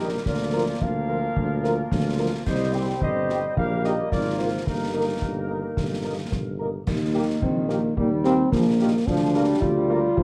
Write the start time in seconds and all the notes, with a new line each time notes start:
Already playing: A#1 D#3 G3 G4 A#4
0.26 D2 F3 A#3 F4 A#4 D5, concert bass drum, snare
0.54 F3 F4 A#4
0.81 D2 F4 A#4 F5, concert bass drum
1.09 F3 F4 A#4
1.36 D2, concert bass drum
1.64 F3 F4 A#4, snare
1.92 D2, concert bass drum, snare
2.19 F3 F4 A#4
2.46 C2 G3 C4 G4 C5 D#5, concert bass drum, snare, crash
2.74 G3 C4 G4 G5
3.01 G1 G4 C5 D#5, concert bass drum
3.30 G3 C4 G4, snare
3.56 A#1 A#3 G4 A#4 F5, concert bass drum
3.84 A#3 D#4 G4 D#5, snare
4.11 G#1 F3 F4 A#4 D5, concert bass drum, snare
4.39 A#3 F4 A#4 C5
4.66 G1 D#3 A#3 D#4 A#4, concert bass drum, snare
4.94 A#3 D#4 A#4
5.22 G1, concert bass drum
5.49 A#3 D#4 A#4
5.77 G1, concert bass drum, snare
6.04 A#3 D#4 A#4
6.32 G1, concert bass drum, snare
6.59 A#3 D#4 A#4
6.86 D#2 D#3 A#3, concert bass drum, snare, crash
7.14 A#3 G4 A#4
7.42 A#1 C4, concert bass drum
7.69 A#3 G4 A#4, snare
7.97 D#2 G3 A#3, concert bass drum
8.24 A#3 C4 G4 A#4, snare
8.52 A#1 F3 A#3, concert bass drum, snare
8.79 D#3 A#3 G4 A#4
9.07 D2 F3 D4, concert bass drum, snare
9.35 G3 A#3 F4 A#4
9.61 D2 F4, concert bass drum
9.90 A#3 F4 A#4
10.17 D2 F3, concert bass drum